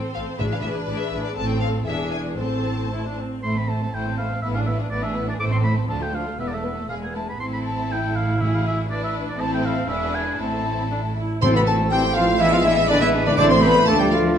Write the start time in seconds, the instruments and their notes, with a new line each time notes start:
Already playing: timpani A2, viola section C4 A4, violin section C5
0.15 double bass section A1, cello section A2, viola section C4 A4, violin section F5
0.39 double bass section A1, cello section A2, timpani A2, viola section D4 G#4, violin section B4 E5
0.52 violin section F5
0.61 double bass section A1, cello section A2, violin section E5
0.65 viola section D4 G#4
0.85 double bass section A1, cello section A2, violin section D5
0.90 viola section D4 G#4
0.98 violin section E5
1.12 double bass section A1, cello section A2, viola section D4 G#4
1.24 violin section D5
1.36 double bass section A1, cello section A2, viola section C4 A4, violin section A4 A5
1.50 violin section G5
1.60 violin section F5
1.85 double bass section E1, cello section E2, viola section D4 G#4, violin section G#4 E5
2.12 violin section G#5
2.37 double bass section A1, cello section A2, viola section C4 A4, violin section C5 A5
2.93 viola section E4
3.07 viola section D4
3.19 viola section C4
3.43 double bass section A1, cello section A2, viola section A3, violin section E4 C5, oboe C6
3.56 violin section C4 A4, viola section C4, oboe B5
3.68 viola section A3, violin section E4 C5, oboe A5
3.81 violin section C4 A4, viola section C4
3.93 double bass section A1, cello section A2, viola section A3, violin section E4 C5, oboe G5
4.07 violin section C4 A4, viola section C4
4.18 viola section A3, violin section E4 C5, oboe F5
4.31 violin section C4 A4, viola section C4
4.42 double bass section A1, cello section A2, viola section B3, violin section E4 B4, oboe E5
4.54 violin section D4 G#4, viola section D4, oboe F5
4.66 viola section B3, violin section E4 B4, oboe E5
4.78 viola section D4, violin section D4 G#4
4.91 double bass section A1, cello section A2, viola section B3, violin section E4 B4, oboe D5
5.03 viola section D4, violin section D4 G#4, oboe E5
5.15 viola section B3, violin section E4 B4
5.27 viola section D4, violin section D4 G#4, oboe D5
5.39 double bass section A1, cello section A2, viola section A3, violin section E4 C5, oboe D6
5.50 viola section C4, violin section C4 A4, oboe C6
5.63 viola section A3, violin section E4 C5, oboe B5
5.75 viola section C4, violin section C4 A4
5.88 double bass section D2, cello section D2, viola section F3, violin section D4 F4, oboe A5
6.01 viola section A3, violin section F4 A4, oboe G5
6.13 viola section F3, violin section D4 F4, oboe F5
6.26 viola section A3, violin section F4 A4
6.38 double bass section E1, cello section E2, violin section B3 B4, viola section B3, oboe E5
6.48 violin section A3 A4, oboe D5
6.54 viola section A3, oboe E5
6.63 violin section B3 B4, viola section B3
6.76 violin section A3 A4, viola section A3
6.88 double bass section E1, cello section E2, viola section G#3, violin section G#4 B4, oboe F5
7.02 viola section B3, violin section G#4, oboe G#5
7.14 viola section G#3, violin section E4 B4, oboe A5
7.28 viola section B3, violin section G#4, oboe B5
7.40 double bass section A1, cello section A2, viola section C4, violin section E4 A4, oboe C6
7.53 oboe B5
7.65 oboe A5
7.92 viola section E4, oboe G5
8.16 oboe F5
8.41 timpani A2, violin section E4 G#4, oboe E5
8.55 oboe F5
8.67 oboe E5
8.89 viola section D4, violin section E4 B4, oboe D5
9.04 oboe E5
9.29 oboe D5
9.38 double bass section A1, cello section A2, viola section C4, violin section E4 A4, oboe A5
9.54 oboe G5
9.66 oboe F5
9.87 double bass section E1, cello section E2, viola section D4, violin section E4 G#4, oboe E5
10.15 oboe G#5
10.37 double bass section A1, cello section A2, viola section C4, violin section E4 A4, oboe A5
10.91 viola section D4
11.18 viola section E4
11.41 double bass section A1, timpani A2, viola section E3 C4, cello section C4, bassoon C4, clarinet E4, violin section A4 C6, oboe A4, french horn section C5, trumpet C5, flute C6
11.54 viola section A3, cello section B3, violin section E4 B5, french horn section B4, trumpet B4, flute B5
11.66 viola section E3 C4, cello section A3, violin section A4 A5, trumpet A4, french horn section A4, flute A5
11.79 viola section A3, violin section E4
11.90 viola section E3 C4, cello section G3, trumpet G4, french horn section G4, violin section A4 G5, oboe C5, flute G5
12.03 viola section A3, violin section E4
12.15 viola section E3 C4, cello section F3, french horn section F4, trumpet F4, violin section A4 F5, flute F5
12.28 viola section A3, violin section E4
12.39 cello section E3, bassoon G#3, viola section B3 D4, french horn section E4, trumpet E4, violin section G#4 E5, flute E5, oboe E5
12.52 cello section F3, viola section G#3 B3, violin section E4 F5, trumpet F4, french horn section F4, flute F5
12.63 cello section E3, viola section B3 D4, trumpet E4, french horn section E4, violin section G#4 E5, flute E5
12.76 viola section G#3 B3, violin section E4
12.88 cello section D3, viola section B3 D4, trumpet D4, french horn section D4, violin section G#4 D5, oboe B4, flute D5
13.01 cello section E3, viola section G#3 B3, violin section E4 E5, trumpet E4, french horn section E4, flute E5
13.13 viola section B3 D4, violin section G#4
13.25 cello section D3, viola section G#3 B3, trumpet D4, french horn section D4, violin section E4 D5, flute D5
13.37 double bass section A1, timpani A2, viola section E3 C4, bassoon A3, cello section D4, clarinet E4, violin section A4 D6, oboe C5, trumpet D5, french horn section D5, flute D6
13.49 viola section A3, cello section C4, violin section E4 C6, trumpet C5, french horn section C5, flute C6
13.61 viola section E3 C4, cello section B3, violin section A4 B5, trumpet B4, french horn section B4, flute B5
13.73 viola section A3, violin section E4
13.85 double bass section D2, viola section F3 A3, bassoon A3, cello section A3, clarinet D4, violin section F4 A5, trumpet A4, french horn section A4, oboe D5, flute A5
13.97 cello section G3, viola section A3, violin section D4 G5, french horn section G4, trumpet G4, flute G5
14.02 viola section F3
14.10 cello section F3, viola section F3 A3, violin section F4 F5, trumpet F4, french horn section F4, flute F5
14.23 viola section F3 A3, violin section D4